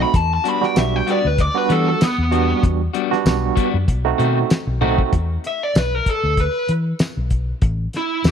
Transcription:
0.00 0.14 A3 medium
0.00 0.14 C4 medium
0.00 0.14 D#4 medium
0.00 0.14 F#4 medium
0.00 0.16 B5 loud
0.14 0.37 E2 loud
0.14 0.31 A5 loud
0.14 kick loud
0.14 closed hi-hat medium
0.34 0.48 A5 loud
0.44 0.65 G3 medium
0.44 0.65 B3 medium
0.44 0.65 D4 medium
0.44 0.64 F#4 medium
0.44 closed hi-hat medium
0.48 0.63 B5 loud
0.61 1.18 G3 loud
0.61 1.18 B3 medium
0.61 1.18 D4 medium
0.61 1.18 F#4 loud
0.61 0.77 G5 medium
0.61 snare soft
0.76 1.00 B1 loud
0.76 0.96 E5 loud
0.76 snare loud
0.76 closed hi-hat medium
0.76 tambourine loud
0.96 1.08 G5 loud
1.07 1.28 G3 medium
1.07 1.27 B3 medium
1.07 1.27 D4 medium
1.07 1.27 F#4 medium
1.07 closed hi-hat medium
1.11 1.27 D5 loud
1.25 1.48 D2 medium
1.25 1.40 B4 loud
1.38 1.56 D5 loud
1.38 kick medium
1.38 closed hi-hat medium
1.54 2.01 G3 medium
1.54 2.01 B3 medium
1.54 2.01 D4 medium
1.54 2.01 F#4 loud
1.54 1.72 B4 loud
1.69 1.93 E3 loud
1.69 1.90 G3 medium
1.69 1.90 B3 medium
1.69 1.89 D4 medium
1.69 1.89 F#4 medium
1.69 1.87 A4 loud
1.69 closed hi-hat medium
1.89 2.02 A4 loud
2.01 2.63 B3 loud
2.01 snare loud
2.01 closed hi-hat loud
2.01 tambourine loud
2.18 2.52 E2 loud
2.31 2.80 G3 medium
2.31 2.52 G3 medium
2.31 2.81 B3 medium
2.31 2.52 B3 medium
2.31 2.80 D4 medium
2.31 2.52 D4 medium
2.31 2.51 F#4 medium
2.31 2.81 F#4 medium
2.31 closed hi-hat medium
2.63 2.87 E2 loud
2.63 kick loud
2.63 closed hi-hat medium
2.93 3.14 G3 medium
2.93 3.14 B3 medium
2.93 3.14 D4 medium
2.93 3.14 F#4 medium
2.93 closed hi-hat medium
3.11 3.68 G3 loud
3.11 3.68 B3 loud
3.11 3.68 D4 loud
3.11 3.68 F#4 loud
3.11 snare soft
3.25 3.49 B1 loud
3.25 snare loud
3.25 closed hi-hat medium
3.25 tambourine loud
3.56 3.77 G3 medium
3.56 3.77 B3 medium
3.56 3.76 D4 medium
3.56 3.76 F#4 medium
3.56 kick medium
3.56 closed hi-hat medium
3.74 3.85 F#2 medium
3.88 4.11 B1 loud
3.88 kick medium
3.88 closed hi-hat medium
4.05 4.51 A3 loud
4.05 4.51 C4 medium
4.05 4.51 D#4 loud
4.05 4.51 F#4 loud
4.18 4.43 B2 loud
4.18 4.39 D#3 medium
4.18 4.39 A3 medium
4.18 4.39 C4 medium
4.18 4.38 F#4 medium
4.18 closed hi-hat medium
4.50 snare loud
4.50 closed hi-hat medium
4.50 tambourine loud
4.67 5.01 B1 loud
4.81 5.02 D#3 medium
4.81 5.13 A3 loud
4.81 5.02 A3 medium
4.81 5.13 C4 loud
4.81 5.01 C4 medium
4.81 5.13 D#4 loud
4.81 5.01 F#4 medium
4.81 5.13 F#4 loud
4.81 high tom medium
4.98 kick loud
5.13 5.36 E2 loud
5.13 kick loud
5.13 closed hi-hat medium
5.44 5.62 E5 medium
5.44 closed hi-hat medium
5.63 5.78 D5 medium
5.75 5.99 B1 medium
5.75 5.95 B4 medium
5.75 snare loud
5.75 closed hi-hat medium
5.75 tambourine loud
5.95 6.07 A#4 medium
6.06 6.38 A4 medium
6.06 kick medium
6.06 closed hi-hat medium
6.24 6.47 D2 medium
6.37 6.69 B4 medium
6.37 kick medium
6.37 closed hi-hat medium
6.68 6.92 E3 medium
6.68 closed hi-hat medium
6.99 snare loud
6.99 closed hi-hat medium
6.99 tambourine loud
7.17 7.51 B1 loud
7.30 kick medium
7.30 closed hi-hat medium
7.62 7.86 A1 loud
7.62 kick loud
7.62 closed hi-hat medium
7.93 8.25 E4 medium
7.93 snare soft
7.93 closed hi-hat medium
8.24 8.31 E2 loud
8.24 snare loud
8.24 closed hi-hat medium
8.24 tambourine loud

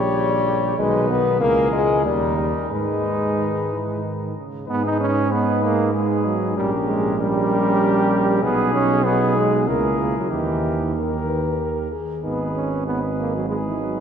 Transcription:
0.00 0.78 A#1 medium
0.00 0.76 C#3 medium
0.00 0.78 G3 loud
0.00 0.77 G4 medium
0.00 0.76 C#5 medium
0.78 1.42 B1 medium
0.78 1.43 D#3 medium
0.78 1.09 G#3 medium
0.78 1.37 D#4 medium
0.78 1.37 B4 medium
1.10 1.40 B3 medium
1.41 2.07 C#2 medium
1.41 2.07 E3 medium
1.41 1.72 A#3 loud
1.41 2.03 G#4 medium
1.41 2.03 A#4 medium
1.72 2.04 G#3 medium
2.05 2.54 D#2 medium
2.05 2.71 D#3 medium
2.05 2.37 G3 medium
2.05 2.69 D#4 medium
2.05 2.72 A#4 medium
2.38 2.70 G3 medium
2.70 4.32 G#2 medium
2.70 3.29 D#3 medium
2.70 4.00 G#3 medium
2.70 4.33 D#4 medium
2.70 4.36 B4 medium
3.38 3.72 D#3 medium
3.71 4.05 E3 medium
4.04 4.36 D#3 medium
4.37 4.67 C#3 medium
4.67 6.53 G#2 medium
4.67 4.83 B3 loud
4.67 5.27 D#4 medium
4.67 5.28 G#4 medium
4.67 5.27 B4 medium
4.85 5.00 D#4 medium
5.00 5.33 C#4 loud
5.31 5.64 B3 medium
5.31 5.93 D#4 medium
5.31 5.93 G#4 medium
5.31 5.92 B4 medium
5.63 5.93 A#3 medium
5.93 6.27 G#3 medium
5.93 6.58 D#4 medium
5.93 6.59 G#4 medium
5.93 6.58 B4 medium
6.25 6.56 F#3 medium
6.56 8.39 A#1 medium
6.56 6.71 G3 medium
6.56 7.18 C#4 medium
6.56 7.18 G4 medium
6.56 7.18 A#4 medium
6.88 7.21 G#3 medium
7.19 8.44 G3 medium
7.19 8.40 C#4 medium
7.19 8.40 G4 medium
7.19 8.44 A#4 medium
8.42 9.69 B1 medium
8.42 8.73 B3 loud
8.42 9.04 D#4 medium
8.42 9.05 G#4 medium
8.42 9.04 G#4 medium
8.74 9.06 C#4 loud
9.05 9.38 B3 loud
9.05 9.70 D#4 medium
9.05 9.69 G#4 medium
9.05 9.67 G#4 medium
9.36 9.67 G#3 medium
9.67 10.15 C#2 medium
9.67 9.99 A#3 medium
9.67 10.33 E4 medium
9.67 10.32 G#4 medium
9.67 10.30 A#4 medium
10.00 10.15 A#3 medium
10.17 10.30 F#3 medium
10.31 11.89 D#2 medium
10.31 10.97 E3 medium
10.31 10.95 D#4 medium
10.31 10.94 G4 medium
10.31 10.79 A#4 medium
10.94 11.60 D#3 medium
10.94 11.89 G4 medium
10.94 11.90 A#4 medium
10.94 11.28 A#4 medium
11.27 11.59 B4 medium
11.60 11.91 A#4 medium
11.91 12.23 G#4 medium
12.23 14.00 G#1 medium
12.23 12.53 B3 medium
12.23 12.69 D#4 medium
12.23 12.82 G#4 medium
12.23 12.82 B4 medium
12.55 12.86 C#4 medium
12.86 13.01 B3 medium
12.86 13.47 D#4 medium
12.86 13.47 G#4 soft
12.86 13.47 B4 medium
13.18 13.33 A#3 medium
13.35 13.49 F#3 medium
13.48 13.56 G#3 medium
13.48 14.00 D#4 medium
13.48 14.00 G#4 soft
13.48 14.00 B4 medium
13.66 13.81 E3 medium
13.80 14.00 F#3 medium

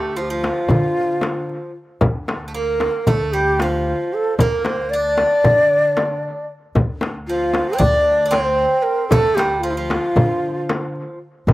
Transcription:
0.00 0.48 D2 medium
0.00 0.18 A3 medium
0.00 0.18 G4 medium
0.16 0.29 F3 medium
0.16 0.23 F4 medium
0.21 0.31 G4 medium
0.30 1.71 F3 medium
0.30 1.74 F4 medium
0.44 darbuka tek medium
0.44 frame drum medium
0.69 1.54 D3 medium
0.69 frame drum medium
0.69 darbuka dum medium
0.97 darbuka ka soft
1.21 darbuka tek medium
1.21 frame drum medium
1.49 darbuka ka soft
2.01 2.86 D2 medium
2.01 frame drum medium
2.01 darbuka dum medium
2.28 darbuka tek medium
2.28 frame drum medium
2.48 2.54 A3 soft
2.54 3.07 A#3 medium
2.54 3.09 A#4 medium
2.80 darbuka tek medium
2.80 frame drum medium
3.07 3.92 D2 medium
3.07 3.34 A3 medium
3.07 3.34 A4 medium
3.07 darbuka dum medium
3.07 frame drum medium
3.32 3.60 G3 medium
3.32 3.62 G4 medium
3.32 darbuka ka soft
3.59 4.42 F3 medium
3.59 4.15 F4 medium
3.59 darbuka tek medium
3.59 frame drum medium
3.87 darbuka ka soft
4.13 4.37 A4 medium
4.38 5.23 D2 medium
4.38 4.93 A#3 medium
4.38 4.66 A#4 medium
4.38 frame drum medium
4.38 darbuka dum medium
4.65 4.91 C5 medium
4.65 darbuka tek medium
4.65 frame drum medium
4.90 6.46 D4 medium
4.90 6.48 D5 medium
5.18 darbuka tek medium
5.18 frame drum medium
5.44 6.28 D3 medium
5.44 frame drum medium
5.44 darbuka dum medium
5.72 darbuka ka soft
5.97 darbuka tek medium
5.97 frame drum medium
6.23 darbuka ka soft
6.75 7.59 D2 medium
6.75 frame drum medium
6.75 darbuka dum medium
7.01 darbuka tek medium
7.01 frame drum medium
7.27 7.75 F3 medium
7.27 7.79 F4 medium
7.54 darbuka tek medium
7.54 frame drum medium
7.73 7.80 C4 medium
7.78 8.64 D2 medium
7.78 8.24 D4 medium
7.78 8.30 D5 medium
7.78 frame drum medium
7.78 darbuka dum medium
8.08 darbuka ka soft
8.26 8.33 D4 medium
8.26 8.84 C5 medium
8.31 9.11 C4 medium
8.31 darbuka tek medium
8.31 frame drum medium
8.61 darbuka ka soft
8.82 9.07 A#4 medium
9.08 9.96 D2 medium
9.08 9.39 A3 medium
9.08 9.36 A4 medium
9.08 frame drum medium
9.08 darbuka dum medium
9.35 9.63 G3 medium
9.35 9.61 G4 medium
9.35 frame drum medium
9.39 darbuka tek medium
9.60 9.76 F3 medium
9.60 9.72 F4 medium
9.70 9.76 E4 medium
9.70 11.20 F4 medium
9.77 11.18 F3 medium
9.90 darbuka tek medium
9.90 frame drum medium
10.16 11.01 D3 medium
10.16 frame drum medium
10.16 darbuka dum medium
10.44 darbuka ka soft
10.69 darbuka tek medium
10.69 frame drum medium
10.95 darbuka ka soft
11.47 11.53 D2 medium
11.47 frame drum medium
11.47 darbuka dum medium

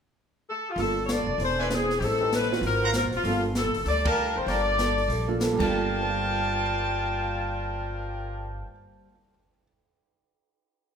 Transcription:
0.49 0.66 A4 medium
0.69 0.79 F4 medium
0.76 1.23 G1 medium
0.76 0.98 G3 soft
0.76 0.95 A#3 medium
0.76 0.98 A#3 soft
0.76 0.95 D4 medium
0.76 0.95 F4 soft
0.76 0.99 F4 medium
0.76 0.99 A4 medium
0.76 0.96 A4 medium
0.76 open hi-hat soft
0.80 1.03 A4 medium
1.06 1.29 G3 medium
1.06 1.29 A#3 medium
1.06 1.29 F4 medium
1.06 1.29 A4 medium
1.06 1.10 C#5 medium
1.06 snare medium
1.06 closed hi-hat soft
1.12 1.41 D5 loud
1.26 1.37 F1 medium
1.38 1.97 E1 medium
1.38 1.60 E3 soft
1.38 1.60 C4 medium
1.38 1.60 D4 soft
1.38 1.61 G#4 soft
1.38 1.59 C5 loud
1.38 open hi-hat soft
1.59 1.72 B4 medium
1.59 1.67 C5 medium
1.59 1.66 D5 medium
1.59 1.67 E5 medium
1.59 1.67 G#5 medium
1.70 1.91 E3 medium
1.70 1.87 C4 soft
1.70 1.91 C4 medium
1.70 1.87 D4 soft
1.70 1.91 D4 medium
1.70 1.88 G#4 medium
1.70 1.91 G#4 medium
1.70 1.97 G#4 medium
1.70 1.88 C5 medium
1.70 snare medium
1.70 closed hi-hat soft
1.90 snare soft
1.98 2.59 A1 medium
1.98 2.21 A2 soft
1.98 2.22 G3 soft
1.98 2.22 C4 medium
1.98 2.02 G4 medium
1.98 open hi-hat soft
2.03 2.22 D#4 medium
2.03 2.33 A4 loud
2.20 2.31 C4 medium
2.20 2.31 D#4 soft
2.20 2.31 G4 medium
2.20 2.31 B4 medium
2.33 2.53 A2 medium
2.33 2.53 G3 medium
2.33 2.53 C4 medium
2.33 2.53 D#4 medium
2.33 2.64 B4 loud
2.33 snare medium
2.33 closed hi-hat soft
2.43 snare soft
2.52 2.92 C4 medium
2.52 2.91 F4 medium
2.52 2.92 F#4 medium
2.52 2.92 C5 medium
2.52 snare soft
2.61 3.00 G#1 medium
2.61 2.83 G#2 soft
2.61 2.84 F#3 soft
2.61 2.84 C4 medium
2.61 2.84 F4 medium
2.61 2.93 A#4 medium
2.61 open hi-hat soft
2.82 2.90 C5 medium
2.82 2.90 F5 medium
2.82 2.90 F#5 medium
2.82 2.90 A#5 loud
2.94 3.14 G#2 soft
2.94 3.14 F#3 medium
2.94 3.15 C4 medium
2.94 3.15 F4 medium
2.94 3.04 A#4 medium
2.94 snare medium
2.94 closed hi-hat medium
3.03 3.13 A#1 medium
3.13 3.23 F#1 medium
3.13 3.43 F4 medium
3.13 open hi-hat soft
3.24 3.62 G1 medium
3.24 3.45 G3 soft
3.24 3.42 A#3 medium
3.24 3.45 A#3 medium
3.24 3.42 D4 soft
3.24 3.46 F4 soft
3.24 3.42 F4 soft
3.24 3.43 A4 medium
3.24 3.46 A4 medium
3.24 open hi-hat soft
3.55 3.76 G3 medium
3.55 3.76 A#3 medium
3.55 3.76 F4 medium
3.55 3.76 A4 medium
3.55 3.85 A4 medium
3.55 snare medium
3.55 closed hi-hat soft
3.64 3.75 A1 medium
3.74 3.85 F#1 medium
3.74 open hi-hat soft
3.85 4.32 D2 medium
3.85 4.06 G3 soft
3.85 4.07 A#3 soft
3.85 4.07 F4 medium
3.85 4.07 A4 soft
3.85 4.05 D5 loud
3.85 open hi-hat soft
4.05 4.45 A#4 medium
4.05 4.35 A#4 medium
4.05 4.45 F5 medium
4.05 4.45 G5 medium
4.05 4.45 A5 loud
4.05 kick medium
4.05 ride medium
4.16 4.37 G3 medium
4.16 4.37 A#3 medium
4.16 4.37 F4 medium
4.16 4.38 A4 medium
4.36 4.46 F#1 medium
4.36 4.48 C5 medium
4.46 5.06 G1 medium
4.46 4.68 G3 soft
4.46 4.68 A#3 medium
4.46 4.69 F4 medium
4.46 4.69 A4 medium
4.46 4.61 A#4 medium
4.46 5.41 D5 loud
4.46 4.61 F5 medium
4.46 4.61 G5 medium
4.46 4.61 A5 medium
4.46 open hi-hat soft
4.78 4.99 G3 medium
4.78 4.99 A#3 medium
4.78 4.99 F4 medium
4.78 4.99 A4 medium
4.78 snare medium
4.78 closed hi-hat soft
4.98 open hi-hat soft
5.08 5.56 A#1 medium
5.08 5.30 G3 medium
5.08 5.30 A#3 soft
5.08 5.31 F4 medium
5.08 5.31 A4 medium
5.08 open hi-hat soft
5.28 5.58 A#3 medium
5.28 5.59 D4 medium
5.28 5.59 F4 medium
5.28 5.60 A4 medium
5.40 5.56 G3 medium
5.40 5.59 A#3 medium
5.40 5.60 F4 medium
5.40 5.60 A4 medium
5.40 snare medium
5.40 closed hi-hat medium
5.53 8.59 G2 medium
5.53 8.62 G3 medium
5.57 8.62 G1 medium
5.57 9.07 G3 medium
5.57 8.66 A#3 medium
5.57 9.10 A#3 medium
5.57 8.66 F5 medium
5.57 8.66 G5 medium
5.57 8.64 G5 medium
5.57 8.65 A5 loud
5.57 kick medium
5.57 crash medium
5.61 8.64 F4 medium
5.61 9.12 F4 medium
5.61 8.68 F4 medium
5.61 8.64 A#4 medium
5.61 8.64 D5 medium
5.66 8.72 A#4 medium
6.02 9.04 C5 soft
6.09 9.12 F5 soft
6.17 9.20 A5 soft
6.27 9.29 C6 soft
6.36 9.39 F6 soft
6.48 9.50 A6 soft
6.59 9.61 C7 soft

